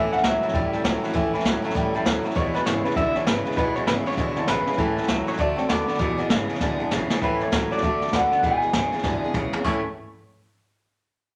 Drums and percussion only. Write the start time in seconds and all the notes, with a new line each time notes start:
0.12 snare
0.18 snare
0.24 snare, hi-hat pedal
0.42 snare
0.48 snare
0.54 kick, snare
0.73 snare
0.84 snare, hi-hat pedal
1.03 snare
1.09 snare
1.15 kick, snare
1.34 snare
1.39 snare
1.45 snare, hi-hat pedal
1.64 snare
1.70 snare
1.75 kick, snare
1.95 snare
2.06 snare, hi-hat pedal
2.25 snare
2.30 snare
2.36 kick, snare
2.55 snare
2.66 snare, hi-hat pedal
2.85 snare
2.91 snare
2.96 kick, snare
3.15 snare
3.27 snare, hi-hat pedal
3.46 snare
3.52 snare
3.56 kick, snare
3.75 snare
3.87 snare, hi-hat pedal
4.06 snare
4.12 snare
4.17 kick, snare
4.36 snare
4.47 snare, hi-hat pedal
4.66 snare
4.72 snare
4.78 kick, snare
4.97 snare
5.03 snare
5.08 snare, hi-hat pedal
5.27 snare
5.33 snare
5.39 kick, snare
5.58 snare
5.69 snare, hi-hat pedal
5.88 snare
5.94 snare
6.00 kick, snare
6.19 snare
6.30 snare, hi-hat pedal
6.49 snare
6.55 snare
6.60 kick, snare
6.91 snare, hi-hat pedal
7.10 snare
7.21 kick, snare
7.40 snare
7.52 kick, snare, hi-hat pedal
7.72 snare
7.77 snare
7.82 kick, snare
8.01 snare
8.07 snare
8.13 kick, snare, hi-hat pedal
8.32 snare
8.43 kick, snare
8.62 snare
8.73 kick, snare, hi-hat pedal
8.93 snare
8.98 snare
9.03 kick, snare
9.34 kick, hi-hat pedal, mid tom
9.53 floor tom
9.64 kick, crash